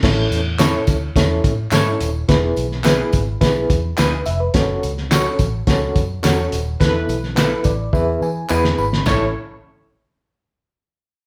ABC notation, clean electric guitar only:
X:1
M:4/4
L:1/16
Q:1/4=106
K:A
V:1 name="Clean electric guitar"
z4 [CEAc] z6 z [CEAc] z3 | z4 [B,EGB] z6 z [B,EGB] z3 | z4 [CFAc] z6 z [CFAc] z3 | z4 [B,EAB] z6 z [B,EGB] z3 |
[CEAc]2 z12 z2 |]